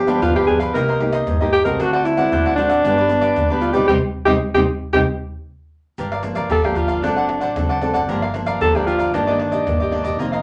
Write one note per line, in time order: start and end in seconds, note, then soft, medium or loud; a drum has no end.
0.00 0.14 G2 medium
0.00 0.19 G2 medium
0.00 0.19 G4 medium
0.07 0.43 F3 medium
0.07 0.43 B3 medium
0.07 0.44 D4 medium
0.07 0.21 G4 medium
0.07 0.21 B4 medium
0.07 0.20 F5 medium
0.07 pandeiro medium
0.07 shaker medium
0.21 0.44 G2 medium
0.21 0.72 D3 medium
0.21 0.34 D4 medium
0.21 0.34 F4 loud
0.21 0.34 G4 soft
0.21 0.34 B4 medium
0.21 0.34 F5 medium
0.21 pandeiro loud
0.21 shaker loud
0.21 surdo loud
0.35 0.46 G4 medium
0.35 0.47 B4 medium
0.35 0.47 F5 medium
0.35 pandeiro soft
0.35 tamborim medium
0.35 shaker soft
0.46 0.70 G2 medium
0.46 0.70 F3 medium
0.46 0.70 B3 medium
0.46 0.60 D4 soft
0.46 0.70 D4 medium
0.46 0.60 G4 soft
0.46 0.59 G#4 medium
0.46 0.59 B4 medium
0.46 0.58 F5 medium
0.46 pandeiro medium
0.46 surdo medium
0.59 0.73 G4 medium
0.59 0.73 B4 medium
0.59 0.72 F5 medium
0.59 pandeiro medium
0.59 tamborim medium
0.59 shaker medium
0.73 1.19 C2 medium
0.73 1.24 C3 medium
0.73 0.96 A#3 medium
0.73 0.86 D#4 soft
0.73 0.97 D#4 medium
0.73 0.97 G4 medium
0.73 1.22 A#4 medium
0.73 0.87 A#4 medium
0.73 0.87 C5 medium
0.73 0.87 D#5 medium
0.73 pandeiro medium
0.73 tamborim medium
0.73 shaker medium
0.73 surdo medium
0.88 0.99 A#4 medium
0.88 0.99 C5 medium
0.88 1.00 D#5 medium
0.88 pandeiro soft
0.88 shaker soft
0.99 1.35 A#3 medium
0.99 1.35 D#4 medium
0.99 1.35 G4 medium
0.99 muted cavaquinho stroke soft
0.99 pandeiro medium
1.13 1.39 A#4 medium
1.13 1.39 C5 medium
1.13 1.38 D#5 medium
1.13 pandeiro medium
1.13 tamborim medium
1.13 shaker medium
1.27 1.77 G2 medium
1.27 1.61 G2 medium
1.27 pandeiro medium
1.27 tamborim medium
1.27 shaker medium
1.27 surdo loud
1.40 1.63 A#3 medium
1.40 1.63 D#4 medium
1.40 1.63 G4 medium
1.40 1.65 A#4 soft
1.40 1.64 C5 medium
1.40 1.63 D#5 medium
1.40 pandeiro soft
1.40 shaker soft
1.53 1.64 G4 loud
1.53 pandeiro medium
1.53 tamborim medium
1.53 shaker medium
1.64 1.77 C2 medium
1.64 2.14 A3 medium
1.64 2.14 C4 medium
1.64 2.14 F#4 medium
1.64 1.81 A#4 medium
1.64 1.78 A#4 medium
1.64 1.78 C5 medium
1.64 1.77 D#5 medium
1.64 pandeiro medium
1.64 shaker medium
1.79 2.24 D2 loud
1.79 2.29 D3 medium
1.79 1.92 D4 medium
1.79 1.92 F#4 loud
1.79 1.92 C5 medium
1.79 1.92 D5 medium
1.79 1.92 F#5 medium
1.79 pandeiro medium
1.79 tamborim medium
1.79 shaker medium
1.79 surdo medium
1.93 2.06 F#4 medium
1.93 2.05 C5 medium
1.93 2.05 D5 medium
1.93 2.05 F#5 medium
1.93 pandeiro soft
1.93 tamborim medium
1.93 shaker soft
2.04 2.55 E4 loud
2.04 muted cavaquinho stroke soft
2.04 pandeiro medium
2.04 tamborim medium
2.04 shaker medium
2.17 2.53 A3 medium
2.17 2.53 C4 medium
2.17 2.54 F#4 medium
2.17 2.31 C5 medium
2.17 2.31 D5 medium
2.17 2.30 F#5 medium
2.17 pandeiro medium
2.17 shaker medium
2.32 2.54 D2 loud
2.32 2.82 A2 medium
2.32 2.44 D4 medium
2.32 2.44 C5 medium
2.32 2.44 D5 medium
2.32 2.44 F#5 medium
2.32 pandeiro medium
2.32 shaker medium
2.32 surdo loud
2.46 2.57 C5 medium
2.46 2.57 D5 medium
2.46 2.57 F#5 medium
2.46 pandeiro soft
2.46 tamborim medium
2.46 shaker soft
2.56 2.80 A1 medium
2.56 2.80 A3 medium
2.56 2.80 C4 medium
2.56 3.58 D4 loud
2.56 2.70 D4 medium
2.56 2.80 F#4 medium
2.56 2.70 C5 medium
2.56 2.69 D5 soft
2.56 2.68 F#5 medium
2.56 pandeiro medium
2.56 shaker medium
2.70 2.83 C5 medium
2.70 2.83 D5 medium
2.70 2.82 F#5 medium
2.70 pandeiro medium
2.70 tamborim medium
2.70 shaker medium
2.84 3.29 G1 medium
2.84 3.34 G2 medium
2.84 3.07 G3 medium
2.84 3.07 B3 medium
2.84 2.96 D4 medium
2.84 3.07 D4 medium
2.84 2.96 G4 medium
2.84 2.97 B4 medium
2.84 2.97 D5 medium
2.84 pandeiro medium
2.84 tamborim medium
2.84 shaker medium
2.84 surdo medium
2.98 3.08 G4 medium
2.98 3.09 B4 medium
2.98 3.09 D5 medium
2.98 pandeiro soft
2.98 shaker soft
3.09 3.35 G3 medium
3.09 3.35 B3 medium
3.09 3.35 D4 medium
3.09 muted cavaquinho stroke soft
3.09 pandeiro medium
3.09 shaker medium
3.21 3.48 G4 medium
3.21 3.48 B4 medium
3.21 3.47 D5 medium
3.21 pandeiro medium
3.21 tamborim loud
3.21 shaker medium
3.36 3.70 D2 medium
3.36 3.86 D3 medium
3.36 pandeiro medium
3.36 tamborim medium
3.36 shaker medium
3.36 surdo loud
3.50 3.72 G3 medium
3.50 3.72 B3 medium
3.50 3.73 D4 medium
3.50 3.74 G4 medium
3.50 3.74 B4 medium
3.50 3.73 D5 medium
3.50 pandeiro soft
3.50 shaker soft
3.61 3.72 F4 medium
3.61 pandeiro medium
3.61 tamborim medium
3.61 shaker medium
3.73 3.86 B1 medium
3.73 3.88 G3 medium
3.73 3.88 C4 medium
3.73 3.88 D#4 medium
3.73 3.86 G4 medium
3.73 3.88 G4 medium
3.73 3.87 B4 medium
3.73 3.87 D5 medium
3.73 pandeiro medium
3.73 shaker medium
3.87 3.99 C2 loud
3.87 3.97 G3 loud
3.87 3.97 C4 loud
3.87 3.97 D#4 loud
3.87 3.94 G4 loud
3.87 3.97 G4 medium
3.87 3.97 C5 loud
3.87 3.97 D#5 medium
3.87 surdo loud
4.25 4.37 C2 medium
4.25 4.36 G3 loud
4.25 4.36 C4 loud
4.25 4.36 D#4 loud
4.25 4.32 G4 loud
4.25 4.36 G4 medium
4.25 4.36 C5 medium
4.25 4.36 D#5 loud
4.25 surdo loud
4.54 4.65 C2 loud
4.54 4.64 G3 medium
4.54 4.64 C4 loud
4.54 4.64 D#4 medium
4.54 4.60 G4 loud
4.54 4.63 G4 medium
4.54 4.63 C5 medium
4.54 4.63 D#5 medium
4.54 surdo loud
4.93 5.04 C2 loud
4.93 5.02 G3 loud
4.93 5.02 C4 loud
4.93 5.02 D#4 loud
4.93 5.02 G4 medium
4.93 4.99 G4 medium
4.93 5.02 C5 medium
4.93 5.02 D#5 medium
4.93 surdo loud
5.98 6.32 G1 medium
5.98 6.48 G2 medium
5.98 6.10 G4 soft
5.98 6.11 A#4 soft
5.98 6.11 D5 medium
5.98 6.11 F5 medium
5.98 pandeiro medium
5.98 shaker medium
5.98 surdo medium
6.12 6.22 A#4 soft
6.12 6.23 D5 medium
6.12 6.23 F5 medium
6.12 pandeiro soft
6.12 tamborim medium
6.12 shaker soft
6.23 6.49 F3 soft
6.23 6.49 A#3 medium
6.23 6.49 D4 medium
6.23 muted cavaquinho stroke soft
6.23 pandeiro medium
6.23 tamborim medium
6.23 shaker medium
6.35 6.48 G1 medium
6.35 6.49 A#4 medium
6.35 6.49 D5 medium
6.35 6.49 F5 medium
6.35 pandeiro medium
6.35 shaker medium
6.50 7.04 G1 loud
6.50 7.01 D3 soft
6.50 6.63 G4 medium
6.50 6.67 A4 loud
6.50 6.63 A#4 soft
6.50 6.63 D5 medium
6.50 6.63 F5 medium
6.50 pandeiro medium
6.50 shaker medium
6.50 surdo loud
6.64 7.00 F3 medium
6.64 7.00 A#3 medium
6.64 7.00 D4 medium
6.64 6.78 G4 medium
6.64 6.75 A#4 medium
6.64 6.76 D5 medium
6.64 6.76 F5 medium
6.64 pandeiro soft
6.64 tamborim medium
6.64 shaker soft
6.75 7.03 F4 medium
6.75 6.89 G4 soft
6.75 6.88 A#4 soft
6.75 6.87 D5 soft
6.75 6.87 F5 medium
6.75 pandeiro medium
6.75 shaker medium
6.75 surdo medium
6.88 7.02 A#4 medium
6.88 7.02 D5 medium
6.88 7.01 F5 medium
6.88 pandeiro medium
6.88 shaker medium
7.02 7.37 F#1 medium
7.02 7.53 F#3 medium
7.02 7.37 C4 medium
7.02 7.15 D4 medium
7.02 7.37 D4 medium
7.02 7.79 D4 medium
7.02 7.37 A4 medium
7.02 7.15 C5 medium
7.02 7.16 D5 medium
7.02 7.15 F#5 medium
7.02 pandeiro medium
7.02 tamborim medium
7.02 shaker medium
7.02 surdo medium
7.16 7.28 C5 medium
7.16 7.27 D5 medium
7.16 7.28 F#5 medium
7.16 pandeiro soft
7.16 shaker soft
7.28 muted cavaquinho stroke soft
7.28 pandeiro medium
7.28 tamborim medium
7.40 7.53 A1 medium
7.40 7.67 C5 medium
7.40 7.67 D5 medium
7.40 7.67 F#5 medium
7.40 pandeiro medium
7.40 shaker medium
7.56 7.90 F#1 medium
7.56 8.06 F#3 medium
7.56 7.78 C4 medium
7.56 7.78 D4 medium
7.56 7.79 A4 medium
7.56 pandeiro medium
7.56 tamborim medium
7.56 shaker medium
7.56 surdo medium
7.69 7.94 C5 medium
7.69 7.93 D5 medium
7.69 7.92 F#5 medium
7.69 pandeiro soft
7.69 shaker soft
7.82 7.99 C4 medium
7.82 7.99 D4 soft
7.82 7.99 A4 medium
7.82 pandeiro medium
7.82 tamborim medium
7.82 shaker medium
7.93 8.09 F#1 medium
7.93 8.07 C5 medium
7.93 8.07 D5 medium
7.93 8.07 F#5 medium
7.93 pandeiro medium
7.93 shaker medium
8.08 8.42 G1 medium
8.08 8.58 G2 medium
8.08 8.24 F3 medium
8.08 8.24 A#3 medium
8.08 8.24 D4 medium
8.08 8.21 G4 soft
8.08 8.21 A#4 soft
8.08 8.21 D5 medium
8.08 8.21 F5 medium
8.08 pandeiro medium
8.08 shaker medium
8.08 surdo medium
8.22 8.34 A#4 medium
8.22 8.34 D5 medium
8.22 8.34 F5 medium
8.22 pandeiro soft
8.22 tamborim medium
8.22 shaker soft
8.34 8.57 F3 soft
8.34 8.57 A#3 medium
8.34 8.57 D4 medium
8.34 muted cavaquinho stroke soft
8.34 pandeiro medium
8.34 tamborim medium
8.34 shaker medium
8.46 8.58 G1 loud
8.46 8.60 A#4 medium
8.46 8.60 D5 medium
8.46 8.59 F5 medium
8.46 pandeiro medium
8.46 shaker medium
8.61 9.06 G1 medium
8.61 9.11 D3 medium
8.61 8.70 F3 medium
8.61 8.70 A#3 medium
8.61 8.71 D4 medium
8.61 8.73 G4 medium
8.61 8.76 A4 loud
8.61 8.74 A#4 soft
8.61 8.74 D5 medium
8.61 8.74 F5 medium
8.61 pandeiro medium
8.61 shaker medium
8.61 surdo loud
8.75 9.10 F3 medium
8.75 9.10 A#3 medium
8.75 9.10 D4 medium
8.75 8.86 G4 medium
8.75 8.86 A#4 medium
8.75 8.87 D5 medium
8.75 8.87 F5 medium
8.75 pandeiro soft
8.75 tamborim medium
8.75 shaker soft
8.86 9.11 F4 medium
8.86 8.99 G4 soft
8.86 8.99 A#4 medium
8.86 8.98 D5 soft
8.86 8.97 F5 medium
8.86 pandeiro medium
8.86 shaker medium
8.99 9.12 A#4 medium
8.99 9.12 D5 medium
8.99 9.12 F5 medium
8.99 pandeiro medium
8.99 shaker medium
9.13 9.47 G1 medium
9.13 9.63 G2 medium
9.13 9.21 D#3 medium
9.13 9.22 A#3 medium
9.13 9.25 D4 soft
9.13 9.22 D4 medium
9.13 9.89 D4 medium
9.13 9.26 G4 medium
9.13 9.26 D5 medium
9.13 9.26 D#5 medium
9.13 pandeiro medium
9.13 tamborim medium
9.13 shaker medium
9.13 surdo medium
9.27 9.62 D#3 medium
9.27 9.63 A#3 medium
9.27 9.63 D4 medium
9.27 9.38 G4 medium
9.27 9.39 D5 medium
9.27 9.38 D#5 medium
9.27 pandeiro soft
9.27 shaker soft
9.39 muted cavaquinho stroke soft
9.39 pandeiro medium
9.39 tamborim medium
9.51 9.63 A#1 medium
9.51 9.78 G4 soft
9.51 9.77 D5 medium
9.51 9.78 D#5 medium
9.51 pandeiro medium
9.51 shaker medium
9.66 10.00 G1 medium
9.66 10.16 G2 soft
9.66 9.88 D#3 medium
9.66 9.88 A#3 soft
9.66 9.89 D4 medium
9.66 pandeiro medium
9.66 tamborim medium
9.66 shaker medium
9.66 surdo loud
9.80 10.04 G4 medium
9.80 10.02 D5 medium
9.80 10.03 D#5 medium
9.80 pandeiro soft
9.80 shaker soft
9.91 10.16 D#3 medium
9.91 10.16 A#3 medium
9.91 10.16 D4 medium
9.91 pandeiro medium
9.91 tamborim medium
10.04 10.18 E1 medium
10.04 10.18 G4 medium
10.04 10.17 D5 medium
10.04 10.17 D#5 medium
10.04 pandeiro medium
10.04 shaker medium
10.18 10.42 F1 medium
10.18 10.42 F2 medium
10.18 10.34 D#3 medium
10.18 10.34 A#3 medium
10.18 10.34 C4 medium
10.18 10.31 F4 soft
10.18 10.31 A#4 medium
10.18 10.31 D#5 medium
10.18 10.31 F5 soft
10.18 pandeiro medium
10.18 shaker medium
10.18 surdo medium
10.32 10.42 A#4 medium
10.32 10.42 D#5 medium
10.32 10.42 F5 medium
10.32 pandeiro soft
10.32 tamborim medium
10.32 shaker soft